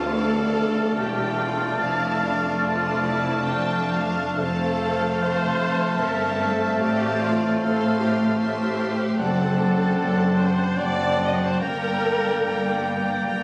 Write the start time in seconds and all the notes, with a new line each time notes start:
Already playing: D2 A3 D4 C5 D5 F5 A5
0.14 A4 D5 F5
0.98 E1 E2 G4 D5 G5
1.41 F4
1.81 F1 F2 E4 F5 A5
2.24 D4
2.64 F4 D5 A5
3.05 E4
3.47 D4 G5
3.93 F5
4.39 F1 F2 A3 C4 A4 C5 F5 A5
5.21 A4 C5 A5
6.01 G1 G2 A#4 E5
6.42 A4
6.81 A1 A2 G4 D5 F5 A5
7.23 F4
7.61 A4 C5 F5 C6
8.01 G4
8.39 G4 C5 E5 C6
9.17 F#1 F#2 C4 D4 A4 D5 F#5 A5
9.38 C5 F#5 A5
9.57 A4 D5 F#5
9.77 C5 F#5 A5
9.98 F#1 F#2 A4 D5 F#5
10.17 C5 F#5 A5
10.37 A4 C5 D5 F#5
10.57 C5 F#5 A5
10.77 F#1 F#2 C4 A4 D5 F#5 A5
10.97 C5 F#5 A5
11.17 A4 D5 F#5
11.26 D#5
11.35 D5
11.40 C5 F#5 A5
11.45 C5
11.53 D5
11.60 G1 G2 A#3 A#4 D5 G5 A#5
11.82 D5 G5 A#5
12.02 A#4 G5 A#5
12.23 D5 G5 A#5
12.41 A#4 G5 A#5
12.45 G1 G2
12.64 D5 G5 A#5
12.84 A#4 G5 A#5
13.05 D5 G5 A#5
13.27 G1 G2 A#4 G5 A#5